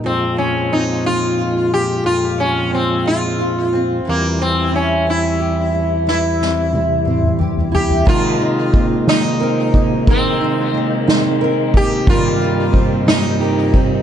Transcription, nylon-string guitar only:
\new Staff \with { instrumentName = "Nylon-string guitar" } { \time 6/8 \key aes \major \tempo 4. = 60 f,8 aes8 c'8 aes8 f'4 | f,8 aes8 c'8 aes8 f'8 c'8 | e8 c'8 e'8 c'8 g'8 e'8 | e8 c'8 e'8 c'8 g'8 e'8 |
<aes bes'>8 ees'8 c'8 ees'8 bes'8 ees'8 | <aes bes'>8 ees'8 c'8 ees'8 bes'8 ees'8 | <g bes'>8 ees'8 c'8 ees'8 bes'8 ees'8 | }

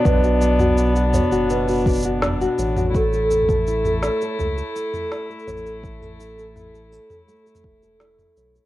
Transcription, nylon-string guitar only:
\new Staff \with { instrumentName = "Nylon-string guitar" } { \time 4/4 \key a \mixolydian \tempo 4 = 83 <b, d' fis' cis''>16 fis'16 d'16 fis'16 d'16 fis'16 cis''16 fis'16 b,16 fis'16 d'16 fis'16 d'16 fis'16 cis''16 fis'16 | a16 a'16 e'16 a'16 e'16 a'16 cis''16 a'16 a16 a'16 e'16 a'16 e'16 a'16 cis''16 a'16 | a16 a'16 e'16 a'16 e'16 a'16 cis''16 a'16 a16 a'16 e'16 a'16 e'16 a'16 cis''8 | }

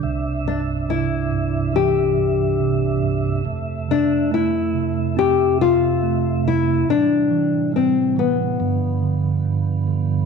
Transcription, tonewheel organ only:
\new Staff \with { instrumentName = "Tonewheel organ" } { \clef bass \time 4/4 \key c \major \tempo 4 = 70 << { e''1~ | e''1 | c2 b2 | } \\ { <c, c d'>1 | <f, c a>1 | <a, e g>2 <g, d f>2 | } >> }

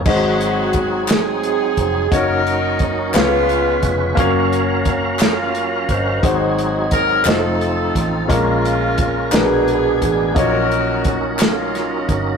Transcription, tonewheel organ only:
\new Staff \with { instrumentName = "Tonewheel organ" } { \time 6/8 \key aes \mixolydian \tempo 4. = 58 <ges c' ees' aes'>2. | <ges des' ees' bes'>4. <aes des' f' ces''>4. | <ges des' aes' bes' f''>2. | <ges c' ees' aes'>4. <f c' ees' a'>4. |
<aes des' f' bes'>4. <aes ces' d' aes'>4. | <ges des' ees' bes'>2. | }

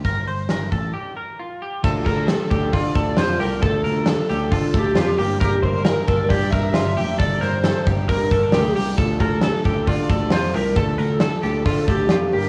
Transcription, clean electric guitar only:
\new Staff \with { instrumentName = "Clean electric guitar" } { \time 4/4 \key d \minor \tempo 4 = 134 bes'8 c''8 bes'8 a'8 g'8 bes'8 f'8 g'8 | a'8 bes'8 a'8 g'8 f'8 a'8 f'8 g'8 | a'8 bes'8 a'8 g'8 f'8 a'8 f'8 g'8 | bes'8 c''8 bes'8 a'8 g'8 bes'8 f'8 g'8 |
a'8 bes'8 a'8 g'8 bes'8 a'8 g'8 g'8 | a'8 bes'8 a'8 g'8 f'8 a'8 f'8 g'8 | a'8 bes'8 a'8 g'8 f'8 a'8 f'8 g'8 | }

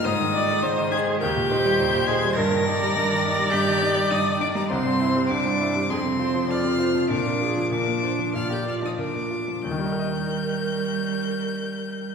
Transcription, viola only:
\new Staff \with { instrumentName = "Viola" } { \time 4/4 \key ees \major \tempo 4 = 100 c''8 d''8 c''4 bes'8 c''4. | bes'8 d''2.~ d''8 | c''2 aes'8 c''8 d''8 c''8 | bes'8 aes'8 bes'8 c''8 d''4 bes'8 r8 |
bes'1 | }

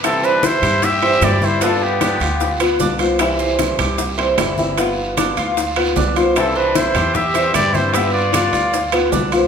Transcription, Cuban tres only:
\new Staff \with { instrumentName = "Cuban tres" } { \time 4/4 \key c \major \tempo 4 = 152 e'8 c''4 g'4 c''8 e'4 | b4 d'8 f'4 b8 d'8 c''8 | e'8 c''4 g'4 c''8 e'4 | b4 d'8 f'4 b8 d'8 c''8 |
e'8 c''4 g'4 c''8 e'4 | b4 d'8 f'4 b8 d'8 c''8 | }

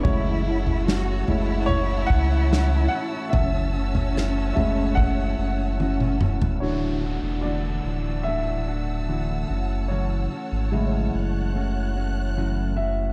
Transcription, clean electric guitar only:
\new Staff \with { instrumentName = "Clean electric guitar" } { \time 4/4 \key fis \minor \tempo 4 = 73 <fis, cis e a cis' fis'>8 <e a cis' fis'>8 <e a cis' fis'>8 <e a cis' fis'>4. <e a cis' fis'>8 <e a cis' fis'>8 | <fis, cis e a cis' fis'>8 <e a cis' fis'>8 <e a cis' fis'>8 <e a cis' fis'>4. <e a cis' fis'>8 <e a cis' fis'>8 | <d e a d' fis'>8 <a d' fis'>8 <d e a d' fis'>4 <e a d' fis'>8 <a d' fis'>8 <d e a d' fis'>8 <e a cis' fis'>8 | <fis, cis e a cis' fis'>8 <e a cis' fis'>8 <fis, cis e a cis' fis'>4 <e a cis' fis'>8 <e a cis' fis'>8 <fis, cis e a cis' fis'>8 <e a cis' fis'>8 | }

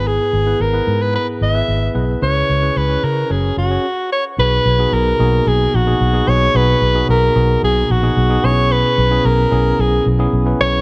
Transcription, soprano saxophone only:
\new Staff \with { instrumentName = "Soprano saxophone" } { \time 4/4 \key gis \minor \tempo 4 = 111 gis'4 ais'8. b'16 b'8 e''4 r8 | cis''4 b'8 ais'8 gis'8 fis'4 cis''8 | b'4 ais'4 gis'8 fis'4 cis''8 | b'4 ais'4 gis'8 fis'4 cis''8 |
b'4 ais'4 gis'8 r4 cis''8 | }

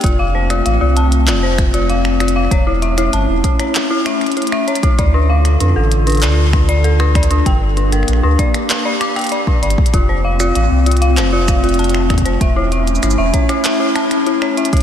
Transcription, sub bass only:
\new Staff \with { instrumentName = "Sub bass" } { \clef bass \time 4/4 \key f \major \tempo 4 = 97 f,,4 a,,16 c,8. f,,2 | e,,4 g,,16 e,,16 r2 r8 | d,4 f,16 a,,8. d,2 | g,,4 bes,,16 d,16 r2 g,,16 r16 |
f,,4 a,,16 c,8. f,,2 | e,,4 g,,16 e,,16 r2 r8 | }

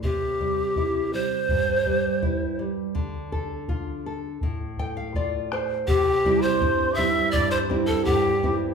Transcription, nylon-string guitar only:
\new Staff \with { instrumentName = "Nylon-string guitar" } { \time 2/4 \key c \mixolydian \tempo 4 = 82 << { r2 | r2 | r2 | r8 g''16 f''16 d''8 c''8 |
r2 | r2 | } \\ { c8 g8 e'8 g8 | g,8 g8 e'8 g8 | d8 a'8 f'8 a'8 | a,8 a'8 f'8 a'8 |
c8 <g c' e'>8 g,8 <g c' e'>8 | g,8 <g c' e'>8 g,8 <g c' e'>8 | } >> }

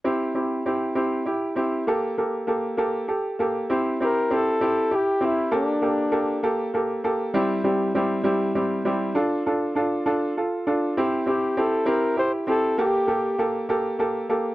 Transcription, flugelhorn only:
\new Staff \with { instrumentName = "Flugelhorn" } { \time 6/8 \key c \mixolydian \tempo 4. = 66 r2. | r2. | r8 bes'8 a'4 g'8 e'8 | d'4. r4. |
r2. | r2. | r8 g'8 a'8 bes'8 c''8 a'8 | g'4 r2 | }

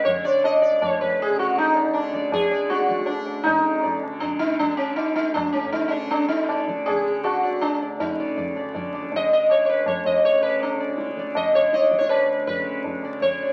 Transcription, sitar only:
\new Staff \with { instrumentName = "Sitar" } { \time 3/4 \tempo 4 = 160 << { r2. | r4. d''8 r8 d''8 | d''8 d''8 d''8 d''8 d''8 d''8 | r4 d''8 r4. |
r2. | r2 d''8 d''8 | r4. d''8 r8 d''8 | r8 d''8 d''8 d''8 d''8 d''8 |
r2. | r4. d''8 r8 d''8 | r4 d''8 d''8 d''8 r8 | r4. d''8 r8 d''8 | } \\ { cis''8 d''8 ees''8 d''8 cis''8 b'8 | gis'8 fis'8 ees'4 d'8 r8 | gis'4 fis'4 d'4 | ees'4. r8 d'8 ees'8 |
d'8 cis'8 ees'8 ees'8 d'8 cis'8 | ees'16. ees'32 d'8 d'8 ees'4 r8 | gis'4 fis'4 d'4 | ees'4. r4. |
ees''8 ees''8 cis''16. cis''32 b'8 cis''8 ees''8 | cis''8 b'8 d'8 r4. | ees''8 cis''8 ees''8. cis''16 b'4 | b'4. r8 cis''4 | } >> }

